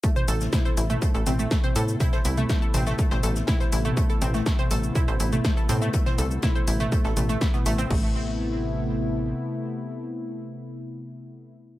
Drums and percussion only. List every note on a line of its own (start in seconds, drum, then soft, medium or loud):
0.03 kick loud
0.03 closed hi-hat loud
0.03 shaker soft
0.16 closed hi-hat soft
0.16 mid tom medium
0.16 shaker soft
0.28 closed hi-hat medium
0.28 open hi-hat loud
0.28 shaker medium
0.41 snare medium
0.41 shaker soft
0.52 kick loud
0.52 snare loud
0.52 closed hi-hat medium
0.52 mid tom medium
0.52 shaker soft
0.65 closed hi-hat soft
0.65 shaker soft
0.77 closed hi-hat medium
0.77 open hi-hat loud
0.77 shaker medium
0.90 mid tom medium
0.90 shaker soft
1.02 kick loud
1.02 closed hi-hat medium
1.02 shaker soft
1.14 closed hi-hat soft
1.14 shaker soft
1.26 closed hi-hat medium
1.26 mid tom medium
1.26 open hi-hat loud
1.26 shaker medium
1.39 shaker soft
1.51 kick loud
1.51 snare loud
1.51 closed hi-hat medium
1.51 shaker soft
1.64 closed hi-hat soft
1.64 mid tom medium
1.64 shaker soft
1.76 closed hi-hat medium
1.76 open hi-hat loud
1.76 shaker medium
1.88 closed hi-hat soft
1.88 shaker soft
2.00 kick loud
2.00 closed hi-hat loud
2.00 mid tom medium
2.00 shaker soft
2.12 snare medium
2.12 shaker soft
2.25 closed hi-hat medium
2.25 open hi-hat loud
2.25 shaker medium
2.37 mid tom medium
2.37 shaker soft
2.49 kick loud
2.49 snare loud
2.49 closed hi-hat medium
2.49 shaker soft
2.62 shaker soft
2.74 closed hi-hat medium
2.74 mid tom medium
2.74 open hi-hat loud
2.74 shaker medium
2.86 snare medium
2.86 shaker soft
2.99 kick loud
2.99 closed hi-hat medium
2.99 shaker soft
3.11 snare medium
3.11 mid tom medium
3.11 shaker soft
3.23 closed hi-hat medium
3.23 open hi-hat loud
3.23 shaker medium
3.36 snare medium
3.36 shaker soft
3.47 kick loud
3.47 snare loud
3.47 closed hi-hat medium
3.47 mid tom medium
3.47 shaker soft
3.60 snare soft
3.60 shaker soft
3.72 snare soft
3.72 closed hi-hat medium
3.72 open hi-hat loud
3.72 shaker medium
3.85 mid tom medium
3.85 shaker soft
3.97 kick loud
3.97 closed hi-hat loud
3.97 shaker soft
4.10 closed hi-hat soft
4.10 shaker soft
4.22 closed hi-hat medium
4.22 mid tom medium
4.22 open hi-hat loud
4.22 shaker medium
4.34 snare medium
4.34 shaker soft
4.46 kick loud
4.46 snare loud
4.46 closed hi-hat medium
4.46 shaker soft
4.59 closed hi-hat soft
4.59 mid tom medium
4.59 shaker soft
4.71 closed hi-hat medium
4.71 open hi-hat loud
4.71 shaker medium
4.83 shaker soft
4.95 kick loud
4.95 closed hi-hat medium
4.95 mid tom medium
4.95 shaker soft
5.08 closed hi-hat medium
5.08 shaker soft
5.19 closed hi-hat medium
5.19 open hi-hat loud
5.19 shaker medium
5.32 mid tom medium
5.32 shaker soft
5.44 kick loud
5.44 snare loud
5.44 closed hi-hat medium
5.44 shaker soft
5.57 closed hi-hat soft
5.57 shaker soft
5.69 closed hi-hat medium
5.69 mid tom medium
5.69 open hi-hat loud
5.69 shaker medium
5.82 closed hi-hat soft
5.82 shaker soft
5.93 kick loud
5.93 closed hi-hat medium
5.93 shaker soft
6.06 snare medium
6.06 mid tom loud
6.06 shaker soft
6.18 closed hi-hat medium
6.18 open hi-hat loud
6.18 shaker medium
6.31 shaker soft
6.42 kick loud
6.42 snare loud
6.42 closed hi-hat medium
6.42 mid tom medium
6.42 shaker soft
6.55 shaker soft
6.67 closed hi-hat medium
6.67 open hi-hat loud
6.67 shaker medium
6.80 snare soft
6.80 mid tom medium
6.80 shaker soft
6.92 kick loud
6.92 closed hi-hat medium
6.92 shaker soft
7.05 snare medium
7.05 shaker soft
7.17 closed hi-hat medium
7.17 mid tom loud
7.17 open hi-hat loud
7.17 shaker medium
7.29 snare medium
7.29 shaker soft
7.41 kick loud
7.41 snare loud
7.41 closed hi-hat medium
7.41 shaker soft
7.53 snare soft
7.53 mid tom loud
7.53 shaker soft
7.66 snare soft
7.66 closed hi-hat medium
7.66 open hi-hat loud
7.66 shaker medium
7.79 shaker soft
7.90 kick loud
7.90 crash medium